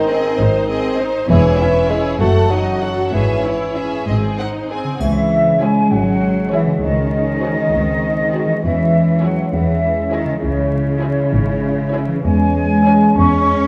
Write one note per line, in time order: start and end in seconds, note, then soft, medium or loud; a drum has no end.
0.00 0.26 G#1 medium
0.00 0.27 G#2 medium
0.00 1.32 G#2 medium
0.00 0.97 D#3 medium
0.00 1.32 D#4 soft
0.00 0.96 D#5 medium
0.10 0.40 C4 medium
0.10 0.40 G#4 medium
0.10 0.40 D#5 medium
0.40 1.17 G#1 medium
0.40 1.17 G#2 medium
0.40 0.70 D#4 medium
0.40 0.70 C5 medium
0.40 1.32 C5 soft
0.40 0.70 C5 medium
0.69 0.98 C4 medium
0.69 0.98 G#4 soft
0.69 0.98 D#5 soft
0.69 1.32 D#5 soft
0.99 1.30 D#4 soft
0.99 1.89 G#4 medium
0.99 1.30 C5 medium
1.29 2.08 E1 medium
1.29 2.07 E2 medium
1.29 2.23 E2 medium
1.29 1.86 E3 medium
1.29 1.58 E4 medium
1.29 1.58 G#4 medium
1.29 1.58 C#5 medium
1.29 1.86 E5 medium
1.59 1.90 C#4 soft
1.59 2.23 C#4 soft
1.59 1.90 E4 soft
1.59 1.90 E5 medium
1.89 2.04 G#3 medium
1.89 2.20 E4 soft
1.89 2.23 G#4 soft
1.89 2.21 G#4 soft
1.89 2.21 C#5 soft
1.89 2.23 E5 soft
1.89 2.18 G#5 medium
2.20 3.01 F#1 medium
2.20 3.00 F#2 medium
2.20 3.16 F#2 medium
2.20 2.52 A3 medium
2.20 2.49 F#4 soft
2.20 2.49 A4 soft
2.20 2.49 F#5 soft
2.20 2.49 A5 medium
2.50 3.14 F#3 medium
2.50 2.82 D#4 soft
2.50 3.16 D#4 soft
2.50 2.83 F#4 soft
2.50 2.83 D#5 soft
2.50 3.10 F#5 medium
2.82 3.13 F#4 soft
2.82 3.16 A4 soft
2.82 3.14 A4 soft
2.82 3.16 D#5 soft
2.82 3.14 F#5 soft
3.13 3.94 G#1 medium
3.13 3.94 G#2 medium
3.13 4.07 G#2 soft
3.13 4.06 E3 medium
3.13 3.43 C#4 soft
3.13 3.44 G#4 soft
3.13 4.03 E5 soft
3.13 3.43 E5 soft
3.45 3.76 E4 soft
3.45 4.10 E4 soft
3.45 3.77 E4 soft
3.45 3.77 C#5 soft
3.76 4.08 C#4 soft
3.76 4.69 G#4 soft
3.76 4.07 G#4 soft
3.76 4.11 C#5 soft
3.76 4.08 E5 soft
4.07 4.88 G#1 soft
4.07 4.88 G#2 medium
4.07 5.03 G#2 soft
4.07 4.37 C4 soft
4.07 4.37 G#4 soft
4.07 4.16 D#5 medium
4.38 4.70 D#4 soft
4.38 5.03 D#4 soft
4.38 4.70 C5 soft
4.38 4.48 F#5 soft
4.70 5.01 C4 soft
4.70 5.01 G#4 soft
4.70 5.04 C5 soft
4.70 5.01 G#5 soft
4.84 6.64 C#3 soft
4.88 6.79 E4 soft
4.93 6.73 G#4 soft
4.93 5.01 F#5 soft
4.97 5.58 E3 medium
4.97 6.83 C#5 soft
4.97 5.62 E5 medium
4.97 triangle soft
5.01 5.75 C#2 medium
5.01 8.60 G#3 medium
5.01 7.70 C#4 medium
5.62 5.92 G#3 medium
5.62 5.85 E4 medium
5.62 5.84 G#4 medium
5.62 5.85 C#5 medium
5.62 5.92 G#5 medium
5.92 6.65 G#1 medium
5.92 6.53 F#3 medium
5.92 6.53 F#5 medium
6.53 6.83 E3 medium
6.53 6.75 E4 medium
6.53 6.75 G#4 medium
6.53 6.76 C#5 medium
6.53 6.60 E5 medium
6.65 8.57 C#3 soft
6.69 8.59 F#4 soft
6.74 8.53 G#4 soft
6.78 8.64 C5 soft
6.83 7.56 C#2 medium
6.83 8.60 D#3 medium
6.83 8.60 D#5 medium
7.43 7.66 F#4 medium
7.43 7.66 G#4 soft
7.43 7.66 C5 medium
7.74 8.46 C#2 medium
7.74 8.64 C4 soft
8.33 8.56 F#4 medium
8.33 8.56 G#4 medium
8.33 8.56 C5 soft
8.46 10.36 E3 soft
8.50 10.28 E4 soft
8.55 10.32 G#4 soft
8.59 10.37 C#5 soft
8.63 9.36 E2 medium
8.63 9.22 E3 medium
8.63 12.08 G#3 soft
8.63 10.38 C#4 medium
8.63 9.22 E5 medium
9.23 9.53 F#3 medium
9.23 9.45 E4 medium
9.23 9.46 G#4 soft
9.23 9.46 C#5 medium
9.23 9.45 F#5 medium
9.46 9.53 F#5 soft
9.53 10.25 E2 medium
9.53 10.11 E3 medium
9.53 10.13 E5 medium
10.12 10.42 D#3 medium
10.12 10.34 E4 soft
10.12 10.35 G#4 medium
10.12 10.35 C#5 medium
10.12 10.42 D#5 medium
10.24 12.18 C#3 soft
10.29 13.67 E4 soft
10.34 12.14 G#4 soft
10.38 12.08 E4 medium
10.38 12.19 C#5 soft
10.42 11.15 C#2 medium
10.42 12.21 C#3 medium
10.42 11.95 C#5 medium
11.02 11.24 E4 medium
11.02 11.24 G#4 medium
11.02 11.25 C#5 soft
11.32 12.07 G#1 medium
11.93 12.16 E4 medium
11.93 12.17 G#4 medium
11.93 12.17 C#5 medium
12.07 13.67 E3 soft
12.11 13.67 C#4 soft
12.16 13.67 G#4 soft
12.20 13.67 C#5 soft
12.24 12.99 E2 medium
12.24 13.15 G#3 medium
12.24 13.67 G#3 medium
12.24 13.67 C#4 medium
12.24 13.15 G#5 medium
12.86 13.09 C#4 medium
12.86 13.09 G#4 medium
12.86 13.09 C#5 medium
13.17 13.67 E2 medium
13.17 13.67 C#4 medium
13.17 13.67 C#6 medium